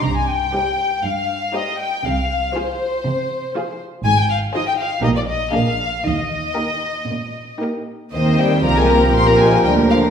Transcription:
<<
  \new Staff \with { instrumentName = "Violin section" } { \time 4/4 \key f \dorian \tempo 4 = 119 bes''16 aes''16 g''4. f''4 ees''8 g''8 | f''4 c''2~ c''8 r8 | \key ees \major aes''16 g''16 f''8 ees''16 g''16 f''8 ees''16 d''16 ees''8 f''4 | ees''2. r4 |
ees''8 g''8 bes''16 aes''16 bes''8 c'''16 bes''16 aes''8 g''8 f''8 | }
  \new Staff \with { instrumentName = "Violin section" } { \time 4/4 \key f \dorian << { r4 c''4 r4 c''4 | r4 c''4 r4 c''4 | \key ees \major r4 c''4 bes'4 bes'4 | r4 bes'4 r4 bes'4 |
c''4 bes'4 bes'2 | } \\ { r4 g'4 r4 g'4 | r4 aes'4 r4 aes'4 | r4 aes'4 g'4 aes'4 | r4 g'4 r4 g'4 |
g'1 | } >> }
  \new Staff \with { instrumentName = "Viola section" } { \time 4/4 \key f \dorian << { r4 ees'4 r4 ees'4 | r4 f'4 r4 f'4 | \key ees \major r4 ees'4 ees'4 d'4 | r4 ees'4 r4 ees'4 |
c'2. bes4 | } \\ { r4 g4 r4 g4 | r4 f4 r4 f4 | r4 f4 bes4 bes4 | r4 bes4 r4 bes4 |
bes4 f2. | } >> }
  \new Staff \with { instrumentName = "French horn section" } { \clef bass \time 4/4 \key f \dorian r1 | r1 | \key ees \major r1 | r1 |
ees8 g8 bes16 aes16 bes8 c'16 bes16 aes8 g8 f8 | }
  \new Staff \with { instrumentName = "Cello section" } { \clef bass \time 4/4 \key f \dorian c4 r4 g,4 r4 | c4 r4 c4 r4 | \key ees \major aes,4 r4 bes,4 bes,4 | ees4 r4 bes,4 r4 |
ees4 c4 bes,4 d4 | }
  \new Staff \with { instrumentName = "Double bass section" } { \clef bass \time 4/4 \key f \dorian c,4 r2. | c,4 r2. | \key ees \major aes,,4 r4 bes,,4 bes,,4 | ees,4 r2. |
ees,4 c,4 bes,,4 d,4 | }
>>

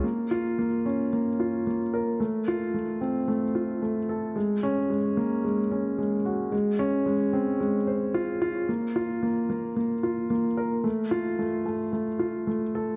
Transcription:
\new Staff \with { instrumentName = "Grand piano" } { \time 4/4 \key f \phrygian \tempo 4 = 111 bes8 f'8 bes8 des'8 bes8 f'8 bes8 bes'8 | a8 f'8 a8 c'8 a8 f'8 a8 a'8 | aes8 des'8 aes8 bes8 aes8 des'8 aes8 ges'8 | aes8 des'8 aes8 c'8 aes8 c''8 f'8 f'8 |
bes8 f'8 bes8 bes8 bes8 f'8 bes8 bes'8 | a8 f'8 a8 a8 a8 f'8 a8 a'8 | }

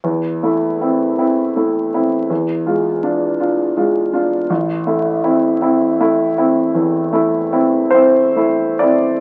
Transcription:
\new Staff \with { instrumentName = "Grand piano" } { \time 12/8 \key a \minor \tempo 4. = 53 << { r1. | r1 r8 c''4 d''8 | } \\ { e,8 <a e'>8 <c' e'>8 <c' e'>8 <a e'>8 <c' e'>8 e,8 <gis f'>8 <d' f'>8 <d' f'>8 <gis f'>8 <d' f'>8 | a,,8 <a e'>8 <c' e'>8 <c' e'>8 <a e'>8 <c' e'>8 e,8 <a e'>8 <c' e'>8 <c' e'>8 <a e'>8 <c' e'>8 | } >> }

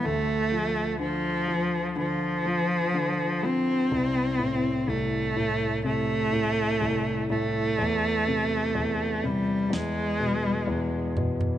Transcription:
<<
  \new Staff \with { instrumentName = "Cello" } { \time 4/4 \key a \minor \tempo 4 = 62 a4 f4 f4. c'8~ | c'4 a4 a4. a8~ | a4. g8 gis4. r8 | }
  \new Staff \with { instrumentName = "Grand piano" } { \clef bass \time 4/4 \key a \minor d,8 f8 d8 f8 d8 f8 d8 f8 | c,8 a,8 c,8 a,8 c8 a,8 c,8 a,8 | e,8 c8 e,8 c8 e,8 b,8 e,8 b,8 | }
  \new DrumStaff \with { instrumentName = "Drums" } \drummode { \time 4/4 r4 r4 r4 r4 | r4 r4 r4 r4 | r4 r4 sn4 r8 tomfh16 tomfh16 | }
>>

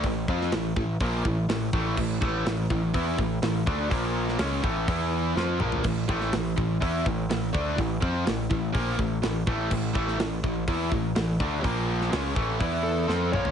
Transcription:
<<
  \new Staff \with { instrumentName = "Lead electric guitar" } { \time 4/4 \tempo 4 = 124 r1 | r1 | r1 | r1 |
r1 | r1 | r2 r8 a'4 cis''8 | }
  \new Staff \with { instrumentName = "Distorted electric guitar" } { \clef bass \time 4/4 <a, e>8 <f c' f'>8 <a, e>8 <a, e>8 <bes, f bes>8 <a, e>8 <a, e>8 <a, e a>8 | <a, e>8 <a, e a>8 <a, e>8 <a, e>8 <e b e'>8 <a, e>8 <a, e>8 <d a d'>8 | <bes, f bes>4 <cis gis cis'>8 <a, e a>8 <e b e'>4 <f c' f'>8 <bes, f bes>8 | <a, e>8 <a, e a>8 <a, e>8 <a, e>8 <e b e'>8 <a, e>8 <a, e>8 <d a d'>8 |
<a, e>8 <f c' f'>8 <a, e>8 <a, e>8 <bes, f bes>8 <a, e>8 <a, e>8 <a, e a>8 | <a, e>8 <a, e a>8 <a, e>8 <a, e>8 <e b e'>8 <a, e>8 <a, e>8 <d a d'>8 | <bes, f bes>4 <cis gis cis'>8 <a, e a>8 <e b e'>4 <f c' f'>8 <bes, f bes>8 | }
  \new Staff \with { instrumentName = "Picked electric bass" } { \clef bass \time 4/4 a,,8 f,8 a,,8 a,,8 bes,,8 a,,8 a,,8 a,,8 | a,,8 a,,8 a,,8 a,,8 e,8 a,,8 a,,8 d,8 | bes,,4 cis,8 a,,8 e,4 f,8 bes,,8 | a,,8 a,,8 a,,8 a,,8 e,8 a,,8 a,,8 d,8 |
a,,8 f,8 a,,8 a,,8 bes,,8 a,,8 a,,8 a,,8 | a,,8 a,,8 a,,8 a,,8 e,8 a,,8 a,,8 d,8 | bes,,4 cis,8 a,,8 e,4 f,8 bes,,8 | }
  \new DrumStaff \with { instrumentName = "Drums" } \drummode { \time 4/4 <hho bd>8 bd16 sn16 <hho sn>8 bd8 <hho bd>8 bd8 <hho sn>8 bd8 | <cymc bd>8 bd8 <hho sn>8 bd8 <hho bd>8 bd8 <hho sn>8 bd8 | <hho bd>8. sn16 <hho sn>8 bd8 <hho bd>4 sn8 toml16 tomfh16 | <cymc hho bd>8 bd16 sn16 <hho sn>8 bd8 <hho bd>8 bd8 <hho sn>8 bd8 |
<hho bd>8 bd8 <hho sn>8 bd8 <hho bd>8 bd8 <hho sn>8 bd8 | <cymc bd>8 bd16 sn16 <hho sn>8 bd8 <hho bd>8 bd8 <hho sn>8 bd8 | <hho bd>8. sn16 <hho sn>8 bd8 <hho bd>4 sn8 toml16 tomfh16 | }
>>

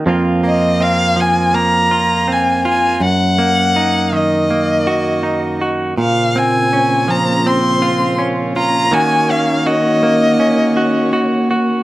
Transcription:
<<
  \new Staff \with { instrumentName = "Violin" } { \time 4/4 \key ees \dorian \tempo 4 = 81 r8 ees''8 f''8 aes''8 bes''4 aes''8 aes''8 | ges''4. ees''2 r8 | f''8 aes''4 bes''8 c'''4 r8 bes''8 | aes''8 f''8 ees''2 r4 | }
  \new Staff \with { instrumentName = "String section" } { \time 4/4 \key ees \dorian r1 | r1 | <des bes f' c''>1 | <ees bes des' ges' des''>1 | }
  \new Staff \with { instrumentName = "Clean electric guitar" } { \time 4/4 \key ees \dorian << { <f bes c' f'>8 bes8 c'4 bes8 f'8 c'8 f'8 | r8 bes8 ees'4 bes8 ges'8 ees'8 ges'8 | r8 c'8 des'4 c'8 f'8 des'8 f'8 | <bes des' ges'>8 des'8 ges'4 des'8 ges'8 ges'8 ges'8 | } \\ { f,4. f2~ f8 | ges,4. ees2~ ees8 | bes,4. f2~ f8 | ees4. bes2~ bes8 | } >> }
>>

